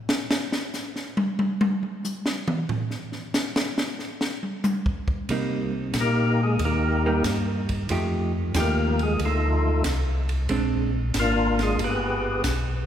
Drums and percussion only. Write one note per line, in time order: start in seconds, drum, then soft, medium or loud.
0.09 snare medium
0.31 snare medium
0.52 snare medium
0.74 snare medium
0.74 hi-hat pedal medium
0.96 snare soft
1.17 high tom medium
1.39 high tom medium
1.61 high tom medium
1.83 high tom soft
2.04 hi-hat pedal medium
2.04 high tom soft
2.26 snare medium
2.48 mid tom medium
2.69 floor tom medium
2.91 snare soft
3.12 snare soft
3.34 snare medium
3.34 hi-hat pedal medium
3.56 snare medium
3.78 snare medium
3.99 snare soft
4.21 snare medium
4.43 high tom soft
4.64 hi-hat pedal medium
4.64 high tom medium
4.86 kick medium
5.08 kick medium
5.29 kick soft
5.29 ride medium
5.94 kick soft
5.94 snare medium
5.94 hi-hat pedal medium
5.94 ride medium
6.59 kick soft
6.59 ride medium
7.24 kick soft
7.24 snare medium
7.24 hi-hat pedal medium
7.24 ride medium
7.69 kick soft
7.69 ride soft
7.89 kick soft
7.89 ride medium
8.54 kick soft
8.54 snare medium
8.54 hi-hat pedal medium
8.54 ride medium
8.99 ride soft
9.19 kick soft
9.19 ride medium
9.84 kick soft
9.84 snare medium
9.84 hi-hat pedal medium
9.84 ride medium
10.29 ride soft
10.49 kick soft
10.49 ride medium
11.14 kick soft
11.14 snare medium
11.14 hi-hat pedal medium
11.14 ride medium
11.59 snare soft
11.59 ride soft
11.79 kick soft
11.79 ride medium
12.44 kick soft
12.44 snare medium
12.44 hi-hat pedal medium
12.44 ride medium